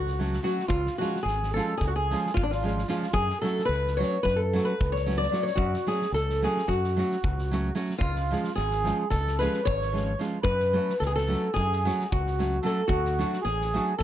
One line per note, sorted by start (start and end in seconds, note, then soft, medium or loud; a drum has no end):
0.00 0.38 C#2 medium
0.00 0.40 F#4 medium
0.00 0.41 F#4 medium
0.07 snare soft
0.19 0.37 F#3 medium
0.19 0.37 A3 soft
0.19 0.37 C#4 soft
0.19 0.37 F#4 medium
0.19 snare soft
0.33 snare soft
0.42 0.61 F#3 medium
0.42 0.62 A3 medium
0.42 0.62 C#4 medium
0.42 0.66 F#4 medium
0.42 0.68 F#4 medium
0.42 0.62 F#4 medium
0.42 snare soft
0.59 snare soft
0.68 0.87 C#2 loud
0.68 0.97 F4 medium
0.68 kick loud
0.86 snare soft
0.98 1.17 F3 medium
0.98 1.18 G#3 medium
0.98 1.18 C#4 medium
0.98 1.18 F4 medium
0.98 1.22 F#4 medium
0.98 1.23 F#4 medium
0.98 snare soft
1.16 snare soft
1.23 1.59 G#1 loud
1.23 1.53 G#4 medium
1.23 1.52 G#4 medium
1.27 snare soft
1.43 snare soft
1.54 1.73 F3 medium
1.54 1.73 G#3 medium
1.54 1.73 C#4 medium
1.54 1.74 F4 medium
1.54 1.77 A4 medium
1.54 snare soft
1.58 1.80 A4 medium
1.78 2.14 C#2 medium
1.78 1.87 G#4 medium
1.78 kick medium
1.82 1.89 G#4 medium
1.82 snare soft
1.87 1.95 F#4 medium
1.96 2.33 G#4 medium
1.96 2.34 G#4 medium
2.11 2.28 F3 medium
2.11 2.29 G#3 medium
2.11 2.29 C#4 medium
2.11 2.29 F4 medium
2.11 snare soft
2.26 snare soft
2.34 2.83 G#1 medium
2.34 2.42 F4 medium
2.34 2.44 F4 medium
2.34 kick medium
2.43 2.50 D4 medium
2.51 2.86 F4 medium
2.51 2.87 F4 medium
2.51 snare soft
2.63 2.80 F3 medium
2.63 2.81 G#3 medium
2.63 2.82 C#4 medium
2.63 2.82 F4 medium
2.67 snare soft
2.78 snare soft
2.88 3.05 F3 medium
2.88 3.06 G#3 soft
2.88 3.06 C#4 medium
2.88 3.06 F4 medium
2.88 3.12 F4 medium
2.88 3.13 F4 medium
2.88 snare soft
3.02 snare soft
3.13 3.31 F#2 medium
3.13 3.41 G#4 loud
3.13 3.42 G#4 medium
3.13 kick medium
3.30 snare soft
3.42 3.60 F#3 medium
3.42 3.61 A3 medium
3.42 3.61 C#4 medium
3.42 3.62 F#4 medium
3.42 3.65 A4 medium
3.42 snare soft
3.46 3.68 A4 medium
3.59 snare soft
3.65 4.02 C#2 medium
3.65 3.95 B4 loud
3.70 3.98 B4 medium
3.70 snare soft
3.87 snare soft
3.97 4.16 F#3 medium
3.97 4.17 A3 medium
3.97 4.17 C#4 medium
3.97 4.17 F#4 medium
3.97 4.21 C#5 medium
4.01 4.23 C#5 medium
4.01 snare soft
4.23 4.58 F#2 medium
4.23 4.39 B4 loud
4.23 4.39 B4 medium
4.23 kick medium
4.23 snare soft
4.36 4.66 A4 medium
4.42 4.66 A4 medium
4.53 4.72 F#3 medium
4.53 4.72 A3 medium
4.53 4.72 C#4 medium
4.53 4.73 F#4 medium
4.53 snare soft
4.65 4.92 B4 medium
4.72 4.95 B4 medium
4.81 5.27 C#2 medium
4.81 kick medium
4.92 5.17 C#5 medium
4.92 snare soft
4.98 5.20 C#5 medium
5.06 5.24 F#3 medium
5.06 5.24 A3 soft
5.06 5.24 C#4 medium
5.06 5.25 F#4 medium
5.06 snare soft
5.18 5.43 D5 medium
5.22 5.45 D5 medium
5.22 snare soft
5.31 5.49 F#3 medium
5.31 5.50 A3 soft
5.31 5.50 C#4 medium
5.31 5.50 F#4 medium
5.31 snare soft
5.43 5.56 C#5 medium
5.43 snare soft
5.48 5.58 C#5 medium
5.55 5.75 F#2 loud
5.55 5.87 F#4 medium
5.55 5.86 F#4 medium
5.55 kick medium
5.74 snare soft
5.87 6.05 F#3 medium
5.87 6.05 A3 medium
5.87 6.05 C#4 soft
5.87 6.05 F#4 medium
5.87 6.13 G#4 medium
5.87 6.12 G#4 medium
5.87 snare soft
6.01 snare soft
6.12 6.46 C#2 medium
6.12 6.44 A4 medium
6.12 6.42 A4 medium
6.12 snare soft
6.30 snare soft
6.42 6.60 F#3 medium
6.42 6.60 A3 medium
6.42 6.61 C#4 medium
6.42 6.61 F#4 medium
6.42 6.69 G#4 medium
6.42 6.67 G#4 medium
6.42 snare soft
6.57 snare soft
6.68 7.02 F#2 medium
6.68 7.72 F#4 medium
6.68 7.73 F#4 medium
6.68 kick medium
6.68 snare soft
6.84 snare soft
6.96 7.15 F#3 medium
6.96 7.15 A3 medium
6.96 7.16 C#4 medium
6.96 7.16 F#4 medium
6.96 snare soft
7.11 snare soft
7.23 7.70 C#2 medium
7.23 kick medium
7.38 snare soft
7.51 7.69 F#3 medium
7.51 7.69 A3 medium
7.51 7.69 C#4 medium
7.51 7.70 F#4 medium
7.51 snare soft
7.75 7.93 F#3 medium
7.75 7.93 A3 medium
7.75 7.93 C#4 medium
7.75 7.93 F#4 medium
7.75 snare soft
7.90 snare soft
7.98 8.34 C#2 loud
7.98 8.57 F4 loud
7.98 8.53 F4 medium
7.98 kick loud
8.16 snare soft
8.31 8.49 F3 medium
8.31 8.49 G#3 soft
8.31 8.49 C#4 medium
8.31 8.50 F4 medium
8.31 snare soft
8.44 snare soft
8.56 8.91 G#1 loud
8.56 9.08 G#4 loud
8.56 9.08 G#4 medium
8.56 snare soft
8.71 snare soft
8.84 9.03 F3 medium
8.84 9.03 G#3 medium
8.84 9.04 C#4 medium
8.84 9.04 F4 medium
8.84 snare soft
9.10 9.46 C#2 loud
9.10 9.38 A4 medium
9.10 9.39 A4 medium
9.10 kick medium
9.10 snare soft
9.27 snare soft
9.39 9.59 F3 medium
9.39 9.59 G#3 medium
9.39 9.59 C#4 medium
9.39 9.60 F4 medium
9.39 9.65 B4 medium
9.39 snare soft
9.43 9.66 B4 medium
9.54 snare soft
9.63 10.20 C#5 medium
9.63 10.21 C#5 loud
9.63 kick medium
9.68 10.14 G#1 medium
9.81 snare soft
9.92 10.11 F3 medium
9.92 10.12 G#3 soft
9.92 10.12 C#4 soft
9.92 10.12 F4 medium
9.92 snare soft
10.19 10.37 F3 medium
10.19 10.37 G#3 medium
10.19 10.37 C#4 medium
10.19 10.38 F4 medium
10.19 snare soft
10.43 10.78 F#2 loud
10.43 10.95 B4 loud
10.43 11.00 B4 loud
10.43 kick loud
10.60 snare soft
10.73 10.92 F#3 medium
10.73 10.92 A3 medium
10.73 10.93 C#4 medium
10.73 10.93 F#4 medium
10.89 snare soft
10.99 11.35 C#2 medium
10.99 11.07 A4 loud
10.99 11.06 A4 medium
10.99 snare soft
11.07 11.15 G#4 medium
11.07 11.16 G#4 medium
11.15 11.53 A4 medium
11.15 snare soft
11.28 11.47 F#3 medium
11.28 11.48 A3 medium
11.28 11.48 C#4 medium
11.28 11.48 F#4 medium
11.28 snare soft
11.54 11.90 F#2 medium
11.54 12.12 G#4 loud
11.54 12.07 G#4 medium
11.54 kick medium
11.54 snare soft
11.72 snare soft
11.85 12.03 F#3 medium
11.85 12.04 A3 medium
11.85 12.04 C#4 medium
11.85 12.04 F#4 medium
11.85 snare soft
12.00 snare soft
12.10 12.59 C#2 medium
12.10 12.59 F#4 medium
12.10 12.66 F#4 medium
12.10 kick medium
12.26 snare soft
12.39 12.56 F#3 medium
12.39 12.56 A3 soft
12.39 12.57 C#4 soft
12.39 12.57 F#4 medium
12.39 snare soft
12.62 12.81 F#3 medium
12.62 12.81 A3 medium
12.62 12.81 C#4 soft
12.62 12.82 F#4 medium
12.62 12.86 A4 medium
12.62 12.90 A4 medium
12.62 snare soft
12.88 13.23 D2 loud
12.88 13.40 F#4 loud
12.88 kick medium
13.05 snare soft
13.19 13.37 F#3 medium
13.19 13.37 A3 medium
13.19 13.37 D4 medium
13.19 13.37 F#4 medium
13.19 snare soft
13.32 snare soft
13.42 13.78 A1 medium
13.42 13.95 G#4 medium
13.42 13.98 G#4 loud
13.42 snare soft
13.61 snare soft
13.74 13.92 F#3 medium
13.74 13.92 A3 medium
13.74 13.93 D4 medium
13.74 13.93 F#4 medium
13.74 snare soft
13.98 14.03 A4 medium